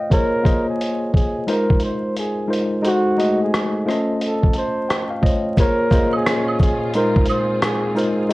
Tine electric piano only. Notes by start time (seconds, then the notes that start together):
Already playing: A3 F4 C5 C#5 F5 G5
0.00 D#5
0.10 A#3 F4 G#4 C5 C#5
0.43 A#3 F4 G#4 C5 D#5
1.47 G#3 D#4 F4 A#4 C5
2.48 G#3 D#4 F4 A#4 C5
2.82 G#3 D#4 F#4 A4 C5
3.17 G#3 A3 D#4 F#4 D#5
3.86 A3 C#4 F4 C5 D#5
4.56 A5
4.89 G5
5.10 F5
5.22 A3 F4 C5 C#5 D#5
5.57 A#3 F4 G#4 C5 C#5
5.91 A#3 F4 G#4 C5 D#5
6.95 G#3 D#4 F4 A#4 C5
7.95 G#3 D#4 F4 A#4 C5
8.29 G#3 D#4